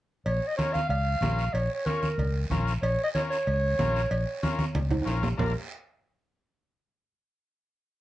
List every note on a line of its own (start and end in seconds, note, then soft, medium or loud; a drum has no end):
0.26 0.39 A#1 medium
0.26 0.49 C#5 medium
0.26 cowbell loud
0.26 long guiro medium
0.47 0.56 D#5 medium
0.57 0.81 C#4 medium
0.57 0.81 F4 medium
0.57 0.81 A#4 medium
0.57 0.75 C#5 medium
0.57 cowbell medium
0.57 high conga medium
0.57 short guiro medium
0.73 0.89 F5 loud
0.73 high conga medium
0.73 short guiro medium
0.89 1.16 C#2 medium
0.89 1.55 F5 loud
0.89 cowbell medium
0.89 long guiro medium
1.21 1.47 A#1 medium
1.21 1.45 C#4 medium
1.21 1.45 F4 medium
1.21 1.45 A#4 medium
1.21 cowbell medium
1.21 high conga medium
1.21 low timbale medium
1.21 short guiro medium
1.38 short guiro medium
1.53 1.67 A#1 medium
1.53 1.74 C#5 medium
1.53 cowbell loud
1.53 long guiro medium
1.74 1.87 C#5 medium
1.85 2.09 C#4 medium
1.85 2.09 F4 medium
1.85 2.50 A#4 medium
1.85 2.09 C#5 medium
1.85 cowbell medium
1.85 high conga medium
1.85 short guiro medium
2.03 high conga medium
2.03 short guiro medium
2.18 2.44 C#2 medium
2.18 cowbell medium
2.18 low conga medium
2.18 long guiro medium
2.50 2.76 A#1 medium
2.50 2.73 C#4 medium
2.50 2.74 F4 medium
2.50 2.74 A#4 loud
2.50 cowbell medium
2.50 high conga medium
2.50 low conga medium
2.50 short guiro medium
2.68 short guiro medium
2.82 2.96 A#1 medium
2.82 3.03 C#5 loud
2.82 cowbell loud
2.82 long guiro medium
3.04 3.09 D#5 loud
3.14 3.38 C#4 medium
3.14 3.38 F4 medium
3.14 3.38 A#4 medium
3.14 3.22 C#5 loud
3.14 cowbell medium
3.14 high conga medium
3.14 short guiro medium
3.30 5.03 C#5 loud
3.30 short guiro medium
3.47 3.73 C#2 medium
3.47 cowbell medium
3.47 long guiro medium
3.79 4.05 A#1 medium
3.79 4.02 C#4 medium
3.79 4.02 F4 medium
3.79 4.02 A#4 loud
3.79 cowbell medium
3.79 high conga medium
3.79 low timbale medium
3.79 short guiro medium
3.96 short guiro medium
4.11 4.24 A#1 medium
4.11 cowbell loud
4.11 long guiro medium
4.43 4.65 C#4 medium
4.43 4.66 F4 medium
4.43 4.66 A#4 medium
4.43 cowbell medium
4.43 high conga loud
4.43 short guiro medium
4.59 high conga medium
4.59 short guiro medium
4.75 5.01 C#2 medium
4.75 cowbell medium
4.75 low conga loud
4.75 long guiro medium
4.91 low conga loud
4.91 high timbale medium
5.02 5.29 C#4 medium
5.02 5.29 F4 medium
5.02 high timbale medium
5.06 5.32 A#1 medium
5.06 5.29 A#4 medium
5.06 cowbell medium
5.06 low conga medium
5.06 short guiro medium
5.23 low conga medium
5.23 low timbale medium
5.23 short guiro medium
5.37 5.54 A#1 medium
5.37 5.53 D4 medium
5.37 5.53 F4 medium
5.37 5.53 A#4 medium
5.37 5.54 A#4 medium
5.37 low conga medium
5.37 low timbale loud
5.37 long guiro medium